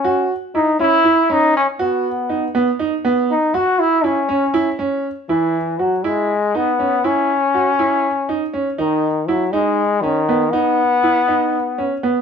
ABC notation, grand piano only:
X:1
M:7/8
L:1/8
Q:1/4=120
K:C#m
V:1 name="Grand piano"
F2 E C E C2 | F2 D B, D B,2 | F2 E C E C2 | E2 F E2 D C |
E2 F E2 D C | D2 E D2 C B, | D2 E D2 C B, |]